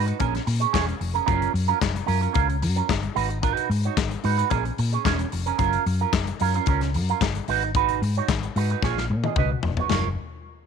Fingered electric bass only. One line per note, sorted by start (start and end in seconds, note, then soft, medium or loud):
0.00 0.11 G#2 loud
0.21 0.38 A#1 loud
0.47 0.65 A#2 medium
0.74 0.92 E1 medium
1.01 1.18 F1 medium
1.28 1.46 F#1 loud
1.54 1.72 F#2 loud
1.82 1.99 F#1 medium
2.08 2.26 F#2 loud
2.36 2.64 C#2 loud
2.63 2.80 F#2 loud
2.90 3.07 G1 loud
3.16 3.51 G#1 loud
3.70 3.87 G#2 medium
3.97 4.15 G#1 medium
4.24 4.42 G#2 loud
4.52 4.69 A#1 loud
4.79 4.96 A#2 loud
5.05 5.23 E1 loud
5.33 5.50 F1 medium
5.59 5.77 F#1 loud
5.86 6.04 F#2 loud
6.13 6.31 F#1 medium
6.41 6.58 F#2 loud
6.67 6.96 C#2 loud
6.95 7.12 F#2 loud
7.21 7.39 G1 loud
7.48 8.03 G#1 medium
8.02 8.19 G#2 medium
8.29 8.46 G#1 medium
8.56 8.73 G#2 loud
8.83 9.11 A#1 loud
9.10 9.27 A#2 loud
9.36 9.54 C#2 medium
9.63 9.81 F1 medium
9.90 10.15 F#1 loud